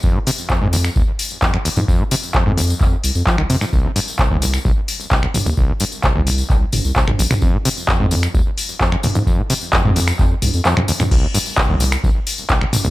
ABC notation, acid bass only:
X:1
M:4/4
L:1/16
Q:1/4=130
K:Fdor
V:1 name="Acid bass" clef=bass
F,, B,, C, z F,, A,, E,, z F,,, z3 F,, F,, E,, F,, | F,, B,, C, z F,, A,, E,, z F,,, z3 F, E, C, A,, | C,, F,, G,, z C,, E,, B,,, z C,, z3 C,, C,, B,,, C,, | C,, F,, G,, z C,, E,, B,,, z C,, z3 C,, C,, B,,, C,, |
F,, B,, C, z F,, A,, E,, z F,,, z3 F,, F,, E,, F,, | F,, B,, C, z F,, A,, E,, z F,,, z3 F,, F,, E,, F,, | C,, F,, G,, z C,, E,, B,,, z C,, z3 C,, C,, B,,, C,, |]